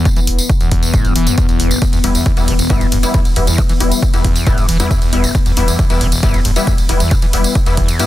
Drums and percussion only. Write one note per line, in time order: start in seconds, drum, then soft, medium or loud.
0.05 kick loud
0.05 closed hi-hat medium
0.05 tambourine medium
0.16 closed hi-hat medium
0.16 tambourine soft
0.27 open hi-hat loud
0.39 closed hi-hat medium
0.39 tambourine medium
0.49 kick loud
0.49 closed hi-hat medium
0.61 closed hi-hat medium
0.61 tambourine soft
0.72 kick medium
0.72 open hi-hat medium
0.83 closed hi-hat soft
0.83 tambourine medium
0.94 kick loud
0.94 closed hi-hat medium
0.94 tambourine medium
1.05 closed hi-hat medium
1.05 tambourine soft
1.16 open hi-hat loud
1.27 closed hi-hat medium
1.27 tambourine medium
1.38 kick loud
1.38 closed hi-hat medium
1.38 tambourine medium
1.49 closed hi-hat medium
1.49 tambourine soft
1.60 open hi-hat medium
1.71 closed hi-hat soft
1.71 tambourine medium
1.82 kick loud
1.82 closed hi-hat medium
1.82 ride medium
1.93 closed hi-hat medium
1.93 ride medium
1.93 tambourine soft
2.04 open hi-hat loud
2.04 ride medium
2.15 closed hi-hat medium
2.15 ride medium
2.15 tambourine medium
2.26 kick loud
2.26 closed hi-hat medium
2.26 ride medium
2.37 closed hi-hat medium
2.37 ride medium
2.37 tambourine soft
2.48 open hi-hat medium
2.48 ride medium
2.59 closed hi-hat soft
2.59 ride medium
2.59 tambourine medium
2.70 kick loud
2.70 closed hi-hat medium
2.70 ride medium
2.70 tambourine medium
2.81 closed hi-hat soft
2.81 ride soft
2.81 tambourine soft
2.92 open hi-hat loud
2.92 ride medium
3.03 closed hi-hat medium
3.03 ride medium
3.03 tambourine medium
3.14 kick loud
3.14 closed hi-hat medium
3.14 ride medium
3.14 tambourine medium
3.25 closed hi-hat medium
3.25 ride medium
3.25 tambourine soft
3.36 open hi-hat medium
3.36 ride medium
3.47 closed hi-hat soft
3.47 ride medium
3.47 tambourine medium
3.58 kick loud
3.58 closed hi-hat medium
3.58 ride medium
3.69 closed hi-hat medium
3.69 ride medium
3.69 tambourine soft
3.80 open hi-hat loud
3.80 ride medium
3.92 closed hi-hat medium
3.92 ride medium
3.92 tambourine medium
4.03 kick loud
4.03 closed hi-hat medium
4.03 ride medium
4.14 closed hi-hat medium
4.14 ride medium
4.14 tambourine soft
4.25 kick medium
4.25 open hi-hat medium
4.25 ride medium
4.36 closed hi-hat soft
4.36 ride medium
4.36 tambourine medium
4.47 kick loud
4.47 closed hi-hat medium
4.47 ride medium
4.47 tambourine medium
4.58 closed hi-hat soft
4.58 ride medium
4.58 tambourine soft
4.69 open hi-hat loud
4.69 ride medium
4.80 closed hi-hat medium
4.80 ride medium
4.80 tambourine medium
4.91 kick loud
4.91 closed hi-hat medium
4.91 ride medium
4.91 tambourine medium
5.02 closed hi-hat soft
5.02 ride medium
5.02 tambourine soft
5.13 open hi-hat medium
5.13 ride medium
5.24 closed hi-hat soft
5.24 ride medium
5.24 tambourine medium
5.35 kick loud
5.35 closed hi-hat medium
5.35 ride medium
5.35 tambourine medium
5.46 closed hi-hat medium
5.46 ride medium
5.46 tambourine soft
5.57 open hi-hat loud
5.57 ride medium
5.68 closed hi-hat medium
5.68 ride medium
5.68 tambourine medium
5.79 kick loud
5.79 closed hi-hat medium
5.79 ride medium
5.90 closed hi-hat medium
5.90 ride medium
5.90 tambourine soft
6.01 open hi-hat medium
6.01 ride medium
6.12 closed hi-hat medium
6.12 ride medium
6.12 tambourine medium
6.23 kick loud
6.23 closed hi-hat medium
6.23 ride medium
6.34 closed hi-hat soft
6.34 ride medium
6.34 tambourine soft
6.45 open hi-hat loud
6.45 ride medium
6.56 closed hi-hat medium
6.56 ride medium
6.56 tambourine medium
6.67 kick loud
6.67 closed hi-hat medium
6.67 ride medium
6.67 tambourine medium
6.78 closed hi-hat medium
6.78 ride medium
6.78 tambourine soft
6.89 open hi-hat medium
6.89 ride medium
7.00 closed hi-hat soft
7.00 ride medium
7.00 tambourine medium
7.11 kick loud
7.11 closed hi-hat medium
7.11 ride medium
7.11 tambourine medium
7.22 closed hi-hat medium
7.22 ride medium
7.22 tambourine soft
7.33 open hi-hat loud
7.33 ride medium
7.44 closed hi-hat medium
7.44 ride medium
7.44 tambourine medium
7.55 kick loud
7.55 closed hi-hat medium
7.55 ride medium
7.55 tambourine medium
7.66 closed hi-hat medium
7.66 ride medium
7.66 tambourine soft
7.77 kick medium
7.77 open hi-hat medium
7.77 ride medium
7.88 closed hi-hat medium
7.88 ride medium
7.88 tambourine medium
7.99 closed hi-hat medium
7.99 ride medium
7.99 tambourine medium